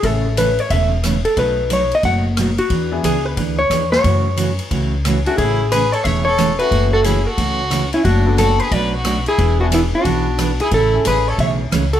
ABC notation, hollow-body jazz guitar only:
X:1
M:4/4
L:1/8
Q:"Swing" 1/4=180
K:A
V:1 name="Hollow-body jazz guitar"
A2 B c e z2 A | B2 c ^d f z2 F- | F2 G B2 c2 c- | c6 z F |
G2 B c e c2 B- | B A G A4 E | F2 A B d B2 G- | G F E F4 G |
A2 B c e z2 A |]